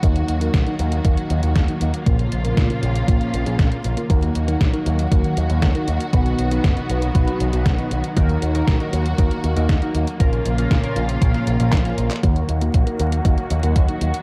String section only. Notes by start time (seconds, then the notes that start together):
Already playing: F#3 F#4
0.03 D#3 A#3
2.06 C#3 F3 F4
4.10 D#3 F#3 F#4
6.13 F#3 B3
8.17 A#3 F#4
10.20 C#3 F3 F4
12.23 D#3 F#3 A#3 F#4